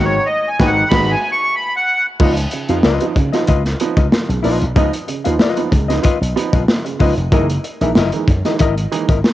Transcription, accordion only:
0.05 0.28 C#5 loud
0.26 0.49 D#5 medium
0.48 0.71 G#5 medium
0.67 0.88 F#5 medium
0.89 1.12 B5 loud
1.11 1.32 G#5 loud
1.32 1.55 C#6 loud
1.55 1.75 B5 loud
1.76 2.06 F#5 medium

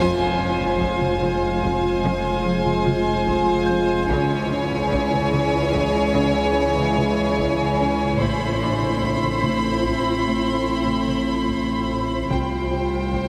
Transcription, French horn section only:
0.00 4.04 G#3 medium
0.00 4.05 F4 medium
4.08 8.03 E3 medium
4.08 8.03 G#3 loud
8.20 12.27 A3 medium
8.20 12.27 C4 medium
12.31 13.28 G3 soft
12.31 13.28 F4 soft

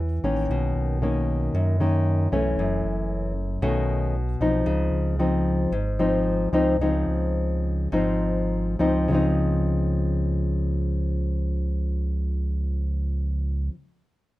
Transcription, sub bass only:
0.00 0.19 E2 medium
0.23 0.48 A1 medium
0.49 0.74 B1 loud
0.75 1.50 B1 medium
1.53 2.28 F#2 medium
2.32 2.56 B1 medium
2.57 2.82 F#1 loud
2.84 3.58 F#1 medium
3.62 4.36 B1 medium
4.40 4.65 B1 medium
4.66 4.91 C#2 loud
4.92 5.67 C#2 medium
5.71 6.48 G#1 medium
6.52 6.77 C#2 medium
6.78 7.04 C#2 loud
7.07 7.88 C#2 medium
7.92 8.76 G#1 medium
8.80 9.08 C#2 medium
9.10 13.69 C#2 medium

